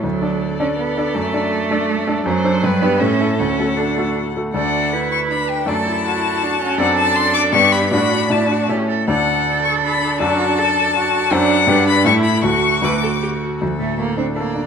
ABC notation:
X:1
M:3/4
L:1/8
Q:1/4=160
K:D
V:1 name="Violin"
d6- | d6 | d4 e2 | f4- f z |
f3 c' b g | a6 | f a =c' d' ^c' b | b2 a2 z2 |
f3 c' b2 | a6 | f3 b c' b | c'2 d'2 z2 |
[K:Cmix] A4 d2 |]
V:2 name="Cello"
F,3 C B,2 | A,6 | F,3 B, C2 | C2 D2 z2 |
A2 B4 | A2 F4 | A4 G2 | F2 E F G A |
A6 | F2 A2 F2 | D4 E2 | F4- F z |
[K:Cmix] F, A, B, C B,2 |]
V:3 name="Grand piano"
D,, [DAd]2 [DAd]2 [DAd] | F,, [DAd]2 [DAd]2 [DAd] | F,, [DA=c] G,, [DGB] A,, [A,EA] | D,, [A,FA]2 [A,FA]2 [A,FA] |
[D,,A,Ad]6 | [F,,A,Ad]6 | [F,,=CAd]4 [G,,B,Gd]2 | [A,,DFd]2 [A,,DFd]2 [A,,EAc]2 |
[D,,DAd]6 | [F,,DAd]6 | [F,,DA=c]2 [G,,DGB]2 [A,,A,EA]2 | [D,,A,FA]2 [D,,A,FA]4 |
[K:Cmix] D,, A,, A, D A D |]
V:4 name="Viola"
A6- | A6 | =c2 B2 A2- | A4- A z |
D2 E2 D2 | D E3 D C | D6 | D4 C z |
D6- | D6 | D2 D2 E2 | F2 B A G F |
[K:Cmix] z6 |]